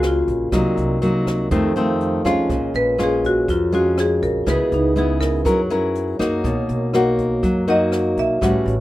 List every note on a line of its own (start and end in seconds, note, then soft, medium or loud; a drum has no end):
0.00 0.24 C#2 medium
0.00 0.50 C#3 medium
0.00 0.49 A#3 medium
0.00 0.49 F4 medium
0.00 0.54 F4 medium
0.00 0.49 G#4 medium
0.00 0.54 G#4 medium
0.00 0.54 A#4 medium
0.00 0.55 C#5 medium
0.00 0.53 D#5 soft
0.00 cross-stick medium
0.00 closed hi-hat soft
0.07 0.51 F4 medium
0.28 0.51 A#1 medium
0.28 kick soft
0.28 closed hi-hat soft
0.49 0.64 C2 medium
0.49 1.49 C3 soft
0.49 0.98 F#3 medium
0.49 0.98 A#3 medium
0.49 1.47 D#4 soft
0.49 0.99 D#4 medium
0.49 1.49 F#4 soft
0.49 kick medium
0.49 cross-stick medium
0.49 closed hi-hat medium
0.54 1.50 A#4 soft
0.54 1.51 D5 medium
0.77 1.47 C2 medium
0.77 closed hi-hat soft
1.02 1.49 F#3 medium
1.02 1.50 A#3 medium
1.02 1.50 D#4 medium
1.02 closed hi-hat soft
1.26 kick soft
1.26 cross-stick medium
1.26 closed hi-hat soft
1.48 2.48 F2 medium
1.48 2.21 F2 medium
1.48 1.72 D#3 medium
1.48 1.72 A3 medium
1.48 1.72 C4 medium
1.48 2.47 D#4 medium
1.48 2.47 G4 medium
1.48 kick medium
1.48 closed hi-hat medium
1.52 2.49 A4 medium
1.52 2.50 C5 medium
1.76 2.21 D#3 medium
1.76 2.22 A3 medium
1.76 2.22 C4 medium
1.76 1.99 F5 medium
1.76 closed hi-hat soft
2.00 2.46 A5 soft
2.00 closed hi-hat soft
2.25 2.48 F2 medium
2.25 2.95 G#3 medium
2.25 2.95 C#4 medium
2.25 2.96 F4 medium
2.25 kick soft
2.25 cross-stick medium
2.25 closed hi-hat soft
2.47 2.61 A#1 medium
2.47 3.46 A#2 medium
2.47 3.93 F4 medium
2.47 3.94 G#4 medium
2.47 3.95 A#4 medium
2.47 kick medium
2.47 closed hi-hat medium
2.52 3.96 C#5 medium
2.74 3.44 A#1 medium
2.74 2.99 B4 loud
2.74 closed hi-hat soft
2.98 3.48 G#3 medium
2.98 3.48 C#4 medium
2.98 3.48 F4 medium
2.98 cross-stick medium
2.98 closed hi-hat soft
3.03 3.25 G#4 medium
3.24 3.49 F#4 medium
3.24 kick soft
3.24 closed hi-hat soft
3.48 4.45 F2 medium
3.48 4.19 F2 medium
3.48 3.73 F4 medium
3.48 kick medium
3.48 closed hi-hat soft
3.72 4.43 G#3 medium
3.72 4.43 C#4 medium
3.72 4.43 F4 medium
3.72 3.98 F#4 medium
3.72 closed hi-hat soft
3.97 4.47 F4 soft
3.97 4.23 G#4 medium
3.97 4.48 A#4 soft
3.97 4.48 C#5 soft
3.97 cross-stick medium
3.97 closed hi-hat soft
4.22 4.45 A#1 medium
4.22 4.47 A#4 medium
4.22 kick soft
4.22 closed hi-hat soft
4.44 4.59 C#2 medium
4.44 5.43 C#3 medium
4.44 4.92 G#3 medium
4.44 4.93 B3 medium
4.44 5.42 E4 medium
4.44 4.93 E4 medium
4.44 5.43 G#4 soft
4.44 kick medium
4.44 cross-stick medium
4.44 closed hi-hat medium
4.48 5.44 B4 soft
4.48 4.73 B4 medium
4.48 5.45 D#5 medium
4.72 5.42 C#2 medium
4.72 4.97 D#4 medium
4.72 closed hi-hat soft
4.96 5.44 G#3 medium
4.96 5.44 B3 soft
4.96 5.44 E4 medium
4.96 5.22 G#4 medium
4.96 closed hi-hat soft
5.21 6.40 A#4 medium
5.21 kick soft
5.21 cross-stick medium
5.21 closed hi-hat soft
5.43 6.16 F#2 medium
5.43 6.19 F#3 medium
5.43 5.60 C#4 medium
5.43 6.41 E4 soft
5.43 5.60 E4 medium
5.43 6.42 G#4 soft
5.43 5.60 A#4 medium
5.43 6.43 A#4 soft
5.43 kick medium
5.43 closed hi-hat medium
5.49 6.44 C#5 medium
5.70 6.16 C#4 medium
5.70 6.16 E4 medium
5.70 6.16 A#4 medium
5.70 closed hi-hat soft
5.95 closed hi-hat soft
6.19 6.43 F#2 medium
6.19 6.90 A#3 medium
6.19 6.90 D#4 medium
6.19 6.90 F#4 medium
6.19 kick soft
6.19 cross-stick medium
6.19 closed hi-hat soft
6.41 6.56 B1 medium
6.41 7.40 B2 medium
6.41 8.36 D#4 medium
6.41 8.37 F#4 medium
6.41 8.38 A#4 medium
6.41 kick medium
6.41 closed hi-hat medium
6.47 8.39 C#5 medium
6.69 7.39 B1 medium
6.69 closed hi-hat soft
6.93 7.64 A#3 medium
6.93 7.64 D#4 soft
6.93 7.64 F#4 medium
6.93 cross-stick medium
6.93 closed hi-hat soft
7.18 kick soft
7.18 closed hi-hat soft
7.43 8.13 F#2 medium
7.43 8.39 F#3 medium
7.43 kick medium
7.43 closed hi-hat medium
7.68 8.38 A#3 medium
7.68 8.38 D#4 medium
7.68 8.38 F#4 medium
7.68 8.15 D#5 medium
7.68 closed hi-hat soft
7.92 cross-stick medium
7.92 closed hi-hat soft
8.17 8.40 B1 medium
8.17 8.64 E5 medium
8.17 kick soft
8.17 closed hi-hat soft
8.39 8.53 A1 medium
8.39 8.80 A2 medium
8.39 8.74 G3 medium
8.39 8.74 C#4 medium
8.39 8.80 F#4 medium
8.39 8.74 F#4 medium
8.39 kick medium
8.39 cross-stick medium
8.39 closed hi-hat medium
8.43 8.80 B4 medium
8.43 8.80 C#5 medium
8.66 8.80 A1 medium
8.66 closed hi-hat soft